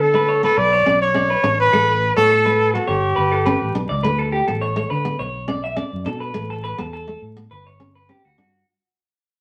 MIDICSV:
0, 0, Header, 1, 5, 480
1, 0, Start_track
1, 0, Key_signature, 2, "major"
1, 0, Tempo, 578035
1, 1432, Time_signature, 4, 2, 24, 8
1, 7811, End_track
2, 0, Start_track
2, 0, Title_t, "Clean electric guitar"
2, 0, Program_c, 0, 27
2, 0, Note_on_c, 0, 69, 65
2, 112, Note_off_c, 0, 69, 0
2, 124, Note_on_c, 0, 71, 75
2, 229, Note_off_c, 0, 71, 0
2, 237, Note_on_c, 0, 73, 73
2, 355, Note_off_c, 0, 73, 0
2, 369, Note_on_c, 0, 71, 71
2, 592, Note_off_c, 0, 71, 0
2, 606, Note_on_c, 0, 73, 68
2, 710, Note_off_c, 0, 73, 0
2, 715, Note_on_c, 0, 74, 75
2, 942, Note_off_c, 0, 74, 0
2, 959, Note_on_c, 0, 74, 85
2, 1076, Note_off_c, 0, 74, 0
2, 1080, Note_on_c, 0, 71, 63
2, 1187, Note_off_c, 0, 71, 0
2, 1191, Note_on_c, 0, 73, 74
2, 1420, Note_off_c, 0, 73, 0
2, 1435, Note_on_c, 0, 69, 79
2, 1554, Note_off_c, 0, 69, 0
2, 1561, Note_on_c, 0, 71, 58
2, 1788, Note_off_c, 0, 71, 0
2, 1798, Note_on_c, 0, 73, 65
2, 1906, Note_off_c, 0, 73, 0
2, 1908, Note_on_c, 0, 69, 79
2, 2030, Note_off_c, 0, 69, 0
2, 2036, Note_on_c, 0, 71, 74
2, 2265, Note_off_c, 0, 71, 0
2, 2274, Note_on_c, 0, 69, 69
2, 2384, Note_off_c, 0, 69, 0
2, 2387, Note_on_c, 0, 73, 86
2, 2617, Note_off_c, 0, 73, 0
2, 2624, Note_on_c, 0, 71, 79
2, 2748, Note_off_c, 0, 71, 0
2, 2754, Note_on_c, 0, 69, 75
2, 2864, Note_off_c, 0, 69, 0
2, 2869, Note_on_c, 0, 71, 81
2, 3098, Note_off_c, 0, 71, 0
2, 3231, Note_on_c, 0, 74, 62
2, 3342, Note_off_c, 0, 74, 0
2, 3350, Note_on_c, 0, 71, 81
2, 3470, Note_off_c, 0, 71, 0
2, 3475, Note_on_c, 0, 69, 64
2, 3584, Note_off_c, 0, 69, 0
2, 3590, Note_on_c, 0, 67, 70
2, 3711, Note_off_c, 0, 67, 0
2, 3717, Note_on_c, 0, 69, 59
2, 3825, Note_off_c, 0, 69, 0
2, 3832, Note_on_c, 0, 73, 74
2, 3952, Note_off_c, 0, 73, 0
2, 3961, Note_on_c, 0, 73, 76
2, 4067, Note_off_c, 0, 73, 0
2, 4070, Note_on_c, 0, 71, 68
2, 4298, Note_off_c, 0, 71, 0
2, 4312, Note_on_c, 0, 73, 78
2, 4539, Note_off_c, 0, 73, 0
2, 4555, Note_on_c, 0, 74, 77
2, 4673, Note_off_c, 0, 74, 0
2, 4681, Note_on_c, 0, 76, 67
2, 4787, Note_off_c, 0, 76, 0
2, 4790, Note_on_c, 0, 74, 74
2, 5018, Note_off_c, 0, 74, 0
2, 5031, Note_on_c, 0, 69, 80
2, 5148, Note_off_c, 0, 69, 0
2, 5152, Note_on_c, 0, 71, 52
2, 5382, Note_off_c, 0, 71, 0
2, 5400, Note_on_c, 0, 69, 56
2, 5506, Note_off_c, 0, 69, 0
2, 5512, Note_on_c, 0, 71, 76
2, 5631, Note_off_c, 0, 71, 0
2, 5642, Note_on_c, 0, 69, 63
2, 5748, Note_off_c, 0, 69, 0
2, 5757, Note_on_c, 0, 69, 74
2, 5982, Note_off_c, 0, 69, 0
2, 6236, Note_on_c, 0, 71, 79
2, 6353, Note_off_c, 0, 71, 0
2, 6366, Note_on_c, 0, 73, 62
2, 6590, Note_off_c, 0, 73, 0
2, 6606, Note_on_c, 0, 71, 68
2, 6709, Note_off_c, 0, 71, 0
2, 6722, Note_on_c, 0, 67, 80
2, 6837, Note_off_c, 0, 67, 0
2, 6851, Note_on_c, 0, 66, 59
2, 6952, Note_off_c, 0, 66, 0
2, 6964, Note_on_c, 0, 66, 67
2, 7186, Note_off_c, 0, 66, 0
2, 7811, End_track
3, 0, Start_track
3, 0, Title_t, "Trumpet"
3, 0, Program_c, 1, 56
3, 2, Note_on_c, 1, 69, 83
3, 360, Note_off_c, 1, 69, 0
3, 365, Note_on_c, 1, 69, 90
3, 482, Note_on_c, 1, 74, 99
3, 495, Note_off_c, 1, 69, 0
3, 839, Note_off_c, 1, 74, 0
3, 844, Note_on_c, 1, 73, 84
3, 1288, Note_off_c, 1, 73, 0
3, 1330, Note_on_c, 1, 71, 104
3, 1771, Note_off_c, 1, 71, 0
3, 1797, Note_on_c, 1, 69, 92
3, 2244, Note_off_c, 1, 69, 0
3, 2270, Note_on_c, 1, 66, 69
3, 2387, Note_on_c, 1, 67, 72
3, 2400, Note_off_c, 1, 66, 0
3, 3109, Note_off_c, 1, 67, 0
3, 7811, End_track
4, 0, Start_track
4, 0, Title_t, "Nylon-string guitar"
4, 0, Program_c, 2, 24
4, 114, Note_on_c, 2, 57, 60
4, 276, Note_off_c, 2, 57, 0
4, 357, Note_on_c, 2, 59, 68
4, 519, Note_off_c, 2, 59, 0
4, 717, Note_on_c, 2, 61, 70
4, 876, Note_off_c, 2, 61, 0
4, 950, Note_on_c, 2, 61, 66
4, 1111, Note_off_c, 2, 61, 0
4, 1193, Note_on_c, 2, 62, 82
4, 1353, Note_off_c, 2, 62, 0
4, 1439, Note_on_c, 2, 57, 88
4, 1597, Note_off_c, 2, 57, 0
4, 1805, Note_on_c, 2, 59, 72
4, 1963, Note_off_c, 2, 59, 0
4, 2043, Note_on_c, 2, 57, 65
4, 2202, Note_off_c, 2, 57, 0
4, 2285, Note_on_c, 2, 59, 68
4, 2443, Note_off_c, 2, 59, 0
4, 2875, Note_on_c, 2, 61, 72
4, 3034, Note_off_c, 2, 61, 0
4, 3114, Note_on_c, 2, 62, 71
4, 3273, Note_off_c, 2, 62, 0
4, 3359, Note_on_c, 2, 57, 75
4, 3517, Note_off_c, 2, 57, 0
4, 3720, Note_on_c, 2, 59, 68
4, 3879, Note_off_c, 2, 59, 0
4, 3954, Note_on_c, 2, 57, 64
4, 4115, Note_off_c, 2, 57, 0
4, 4194, Note_on_c, 2, 59, 66
4, 4355, Note_off_c, 2, 59, 0
4, 4549, Note_on_c, 2, 61, 71
4, 4710, Note_off_c, 2, 61, 0
4, 4787, Note_on_c, 2, 61, 79
4, 4949, Note_off_c, 2, 61, 0
4, 5031, Note_on_c, 2, 62, 74
4, 5191, Note_off_c, 2, 62, 0
4, 5266, Note_on_c, 2, 57, 83
4, 5428, Note_off_c, 2, 57, 0
4, 5634, Note_on_c, 2, 59, 72
4, 5795, Note_off_c, 2, 59, 0
4, 5876, Note_on_c, 2, 57, 57
4, 6037, Note_off_c, 2, 57, 0
4, 6117, Note_on_c, 2, 59, 69
4, 6277, Note_off_c, 2, 59, 0
4, 6477, Note_on_c, 2, 61, 66
4, 6635, Note_off_c, 2, 61, 0
4, 6719, Note_on_c, 2, 61, 66
4, 6876, Note_off_c, 2, 61, 0
4, 6959, Note_on_c, 2, 62, 75
4, 7117, Note_off_c, 2, 62, 0
4, 7811, End_track
5, 0, Start_track
5, 0, Title_t, "Fingered electric bass"
5, 0, Program_c, 3, 33
5, 0, Note_on_c, 3, 50, 85
5, 378, Note_off_c, 3, 50, 0
5, 477, Note_on_c, 3, 35, 106
5, 676, Note_off_c, 3, 35, 0
5, 717, Note_on_c, 3, 35, 89
5, 1117, Note_off_c, 3, 35, 0
5, 1195, Note_on_c, 3, 33, 79
5, 1395, Note_off_c, 3, 33, 0
5, 1436, Note_on_c, 3, 33, 90
5, 1741, Note_off_c, 3, 33, 0
5, 1799, Note_on_c, 3, 45, 88
5, 2295, Note_off_c, 3, 45, 0
5, 2395, Note_on_c, 3, 31, 87
5, 2594, Note_off_c, 3, 31, 0
5, 2638, Note_on_c, 3, 31, 89
5, 2942, Note_off_c, 3, 31, 0
5, 3003, Note_on_c, 3, 33, 74
5, 3102, Note_off_c, 3, 33, 0
5, 3116, Note_on_c, 3, 35, 73
5, 3228, Note_off_c, 3, 35, 0
5, 3246, Note_on_c, 3, 37, 87
5, 3344, Note_off_c, 3, 37, 0
5, 3355, Note_on_c, 3, 38, 86
5, 3660, Note_off_c, 3, 38, 0
5, 3726, Note_on_c, 3, 33, 77
5, 4018, Note_off_c, 3, 33, 0
5, 4076, Note_on_c, 3, 50, 82
5, 4274, Note_off_c, 3, 50, 0
5, 4316, Note_on_c, 3, 35, 84
5, 4821, Note_off_c, 3, 35, 0
5, 4924, Note_on_c, 3, 42, 76
5, 5016, Note_off_c, 3, 42, 0
5, 5035, Note_on_c, 3, 47, 89
5, 5234, Note_off_c, 3, 47, 0
5, 5273, Note_on_c, 3, 33, 81
5, 5579, Note_off_c, 3, 33, 0
5, 5640, Note_on_c, 3, 40, 68
5, 5935, Note_off_c, 3, 40, 0
5, 5992, Note_on_c, 3, 45, 78
5, 6192, Note_off_c, 3, 45, 0
5, 6235, Note_on_c, 3, 31, 96
5, 6741, Note_off_c, 3, 31, 0
5, 6845, Note_on_c, 3, 38, 67
5, 6937, Note_off_c, 3, 38, 0
5, 6961, Note_on_c, 3, 43, 71
5, 7158, Note_off_c, 3, 43, 0
5, 7811, End_track
0, 0, End_of_file